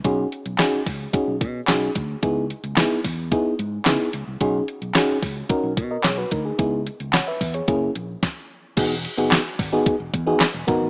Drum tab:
CC |----------------|----------------|----------------|----------------|
HH |x-xxx-o-x-x-x-x-|x-xxx-o-x-x-x-x-|x-xxx-o-x-x-x-x-|x-xxx-oxx-x-----|
CP |----x-------x---|----x-------x---|----x-------x---|----x-----------|
SD |----o-------o---|----o-------o---|----o-------o---|----o-------o---|
BD |o-----o-o-o---o-|o-----o-o-------|o-----o-o-o---o-|o-----o-o---o---|

CC |x---------------|
HH |x-xxx-o-x-x-x-x-|
CP |----x-------x---|
SD |----o-------o---|
BD |o-----o-o-o---o-|